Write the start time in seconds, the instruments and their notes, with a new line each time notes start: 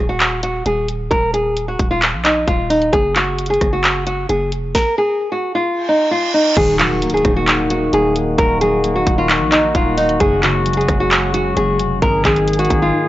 Already playing: 808-style bass D#1
0.09 nylon-string guitar F#4
0.20 clap, closed hi-hat
0.43 nylon-string guitar F#4, closed hi-hat
0.66 808-style bass D#1, nylon-string guitar G#4, closed hi-hat
0.88 closed hi-hat
1.11 808-style bass D#1, nylon-string guitar A#4, kick, closed hi-hat
1.34 nylon-string guitar G#4, closed hi-hat
1.57 closed hi-hat
1.68 nylon-string guitar F#4
1.79 808-style bass D#1, kick, closed hi-hat
1.91 nylon-string guitar F4
2.02 clap, closed hi-hat
2.14 808-style bass A#1
2.24 nylon-string guitar D#4, clap, closed hi-hat
2.48 808-style bass D#1, nylon-string guitar F4, kick, closed hi-hat
2.70 nylon-string guitar D#4, closed hi-hat, open hi-hat
2.82 closed hi-hat
2.93 808-style bass F#1, nylon-string guitar G#4, kick, closed hi-hat
3.16 nylon-string guitar F#4, clap, closed hi-hat
3.39 closed hi-hat
3.46 nylon-string guitar G#4, closed hi-hat
3.54 closed hi-hat
3.61 808-style bass F#1, kick, cross-stick, closed hi-hat
3.73 nylon-string guitar F#4
3.84 clap, closed hi-hat
4.07 nylon-string guitar F#4, closed hi-hat
4.29 808-style bass F#1, nylon-string guitar G#4, closed hi-hat
4.52 808-style bass F1, closed hi-hat
4.75 nylon-string guitar A#4, kick, snare
4.98 nylon-string guitar G#4
5.32 nylon-string guitar F#4
5.55 nylon-string guitar F4
5.66 reverse cymbal
5.89 nylon-string guitar D#4
6.11 nylon-string guitar F4
6.34 nylon-string guitar D#4
6.56 808-style bass D#1, harp D#3, brass ensemble D#3 A#3 F#4, nylon-string guitar G#4, kick, closed hi-hat, crash, impact
6.79 harp F#3, nylon-string guitar F#4, clap, closed hi-hat
7.02 808-style bass C#1, harp A#3, closed hi-hat
7.10 closed hi-hat
7.14 nylon-string guitar G#4, closed hi-hat
7.25 808-style bass D#1, harp D#4, kick, cross-stick, closed hi-hat
7.36 nylon-string guitar F#4
7.48 harp D#5, clap, closed hi-hat
7.70 harp D#4, nylon-string guitar F#4, closed hi-hat
7.93 808-style bass D#1, harp A#3, nylon-string guitar G#4, closed hi-hat
8.16 closed hi-hat
8.38 808-style bass D#1, harp D#3, nylon-string guitar A#4, kick, closed hi-hat
8.61 harp F#3, nylon-string guitar G#4, closed hi-hat
8.84 harp A#3, closed hi-hat
8.96 nylon-string guitar F#4
9.06 808-style bass D#1, harp D#4, kick, closed hi-hat
9.18 nylon-string guitar F4
9.29 harp D#5, clap, closed hi-hat
9.41 808-style bass A#1
9.52 nylon-string guitar D#4, harp D#4, clap, closed hi-hat
9.75 808-style bass D#1, harp A#3, nylon-string guitar F4, kick, closed hi-hat
9.97 nylon-string guitar D#4, closed hi-hat, open hi-hat
10.09 closed hi-hat
10.20 808-style bass F#1, harp F#2, brass ensemble C#3 G#3, nylon-string guitar G#4, kick, closed hi-hat
10.43 harp C#3, nylon-string guitar F#4, clap, closed hi-hat
10.66 harp F#3, closed hi-hat
10.73 nylon-string guitar G#4, closed hi-hat
10.81 closed hi-hat
10.88 808-style bass F#1, harp G#3, kick, cross-stick, closed hi-hat
11.00 nylon-string guitar F#4
11.11 harp C#4, clap, closed hi-hat
11.34 harp G#3, nylon-string guitar F#4, closed hi-hat
11.56 808-style bass F#1, harp F#3, nylon-string guitar G#4, closed hi-hat
11.79 808-style bass F1, closed hi-hat
12.02 808-style bass G#1, harp G#2, brass ensemble D#3 A#3 G#4, nylon-string guitar A#4, kick, closed hi-hat
12.25 808-style bass G#1, harp D#3, nylon-string guitar G#4, kick, clap, closed hi-hat
12.36 closed hi-hat
12.47 harp G#3, closed hi-hat
12.53 closed hi-hat
12.59 nylon-string guitar F#4, closed hi-hat
12.65 closed hi-hat
12.70 808-style bass G#1, harp A#3, kick, closed hi-hat
12.82 nylon-string guitar F4
12.93 harp D#4